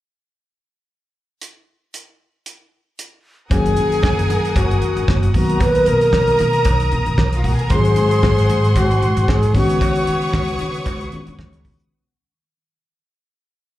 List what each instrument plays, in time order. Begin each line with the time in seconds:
1.41 closed hi-hat
1.94 closed hi-hat
2.46 closed hi-hat
2.99 closed hi-hat
3.50 upright bass F#1, reed electric piano D#3 F#3 A#3 C#4 F#4, violin section G#4 G#5, alto flute G#4, string section A#4 F#5 D#6, kick, closed hi-hat, cowbell
3.66 closed hi-hat
3.77 upright bass F#2, closed hi-hat
3.92 closed hi-hat
4.03 upright bass F#1, kick, snare, cowbell
4.19 closed hi-hat
4.30 upright bass F#2, closed hi-hat
4.45 closed hi-hat
4.56 upright bass F#1, alto flute F#4, kick, closed hi-hat, cowbell
4.71 closed hi-hat
4.82 upright bass F#2, closed hi-hat
4.97 upright bass F#2, closed hi-hat
5.08 upright bass F#1, kick, snare, cowbell
5.23 closed hi-hat
5.34 upright bass B1, reed electric piano D#3 F#3 A#3 B3 F#4, alto flute F#4, violin section A#4 A#5, string section A#4 A#5 D#6, kick, open hi-hat
5.50 closed hi-hat
5.60 alto flute B4, kick, closed hi-hat, cowbell
5.75 closed hi-hat
5.86 upright bass B2, alto flute A#4, closed hi-hat
6.01 closed hi-hat
6.13 upright bass B1, kick, snare, cowbell
6.28 closed hi-hat
6.39 upright bass B2, closed hi-hat
6.53 closed hi-hat
6.65 upright bass B1, kick, closed hi-hat, cowbell
6.80 closed hi-hat
6.92 upright bass B2, closed hi-hat
7.06 upright bass B2, closed hi-hat
7.18 upright bass B1, kick, snare, cowbell
7.33 violin section F4 F5, closed hi-hat
7.43 upright bass B2, violin section F#4 F#5, kick, open hi-hat
7.53 violin section G#4 G#5
7.59 violin section A#4 A#5, closed hi-hat
7.70 upright bass G#1, reed electric piano D#3 F#3 G#3 C4 F4, string section G#4 F#5 C6, alto flute G#4, violin section C5 C6, kick, closed hi-hat, cowbell
7.79 reed electric piano F#4
7.85 closed hi-hat
7.96 upright bass G#2, closed hi-hat
8.11 closed hi-hat
8.23 upright bass G#1, kick, snare, cowbell
8.38 closed hi-hat
8.49 upright bass G#2, closed hi-hat
8.64 closed hi-hat
8.76 upright bass G#1, alto flute F#4, kick, closed hi-hat, cowbell
8.91 closed hi-hat
9.02 upright bass G#2, closed hi-hat
9.17 upright bass G#2, closed hi-hat
9.28 upright bass G#1, alto flute G#4, kick, snare, cowbell
9.43 closed hi-hat
9.53 upright bass C#3, reed electric piano D#3 G#3 B3 C#4 F#4, alto flute F#4, string section B4 F#5 D#6, violin section C#5 C#6, kick, open hi-hat
9.69 closed hi-hat
9.81 kick, closed hi-hat, cowbell
9.96 closed hi-hat
10.07 upright bass C#3, closed hi-hat
10.22 closed hi-hat
10.33 upright bass C#2, kick, snare, cowbell
10.48 closed hi-hat
10.59 upright bass C#3, closed hi-hat
10.74 closed hi-hat
10.86 upright bass C#2, kick, closed hi-hat, cowbell
11.01 closed hi-hat
11.12 upright bass C#3, reed electric piano D#3 G#3 B3 C#4 F4, closed hi-hat
11.20 reed electric piano F#4
11.27 upright bass C#3, closed hi-hat
11.39 upright bass C#2, kick, snare, cowbell
11.53 closed hi-hat
11.65 upright bass C#3, kick, open hi-hat
11.80 closed hi-hat